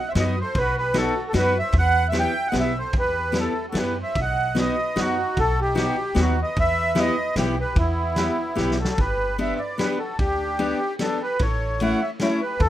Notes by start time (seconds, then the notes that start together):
0.09 C5 E5
0.15 F#2 B3 D#4 F#4, snare, ride
0.19 B4 D#5
0.41 A4 C5
0.55 B1 B4, kick, ride
0.59 F#4
0.78 G4 B4
0.94 B3 D#4 F#4 A4, snare, ride
1.00 F#4
1.29 F#4 A4
1.33 F#2 B3 D#4 F#4, snare, ride
1.38 F#4 B4
1.59 C5 E5
1.72 E2, kick, ride
1.79 B4 F#5
2.09 B3 E4 C5 E5
2.13 G4, snare, ride
2.19 E5 G5
2.48 D#5 F#5
2.52 B1 B3 E4 G4, snare, ride
2.59 B4 E5
2.79 A4 C5
2.93 E2 G4, kick, ride
2.99 B4
3.32 B3 E4 G4, snare, ride
3.38 E4 A4
3.68 F#4 A4
3.72 F#2 B3 E4 G4, snare, ride
3.79 G4 B4
4.00 C5 E5
4.15 B1 D#5, kick, ride
4.21 F#5
4.55 B3 D#4 F#4, snare, ride
4.59 B4 D#5
4.96 F#2 B3 D#4 F#4, snare, ride
5.00 D#4
5.37 B1 A4, kick, ride
5.41 F#4
5.61 D#4 G4
5.75 B3 D#4 F#4, snare, ride
6.15 D#2 B3 D#4 F#4, snare, ride
6.20 D#4 F#4
6.41 B4 D#5
6.56 E2 B4 E5, kick, ride
6.95 B3 E4 G4 B4, snare, ride
6.99 D#5
7.36 B1 B3 E4 G4, snare, ride
7.58 G4 B4
7.76 E2 B3 E4, kick, ride
8.16 B3 E4 G4, snare, ride
8.55 B1 B3 E4 G4, snare
8.71 snare
8.80 F#4 A4
8.85 snare
8.97 G1 G4 B4, kick, ride
9.38 B3 D4 G4 B4 E5, ride
9.54 C5 E5
9.58 B4 D5
9.78 B3 D4 G4 B4, snare, ride
9.98 F#4 A4
10.18 D2 D4 G4, kick, ride
10.59 B3 D4 G4, ride
10.99 B3 D4 G4 A4, snare, ride
11.20 G4 B4
11.39 A1 A4 C#5, kick, ride
11.80 A3 C#4 E4 C#5 F#5, ride
12.01 C#5 E5
12.20 A3 C#4 E4 A4 C#5, snare, ride
12.41 G4 B4
12.60 E2 E4 A4, kick, ride